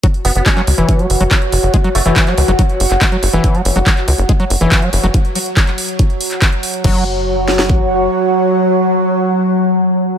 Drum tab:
CC |----------------|----------------|----------------|----------------|
HH |xxoxxxoxxxoxxxox|xxoxxxoxxxoxxxox|xxoxxxoxxxoxxxox|xxoxxxoxxxoxxxox|
CP |----xx------x---|----xx-----xx---|----xx------x---|----xx-----xx---|
SD |----------------|----------------|----------------|----------------|
BD |o---o---o---o---|o---o---o---o---|o---o---o---o---|o---o---o---o---|

CC |x---------------|----------------|
HH |----------------|----------------|
CP |----------------|----------------|
SD |------oo--------|----------------|
BD |o-------o-------|----------------|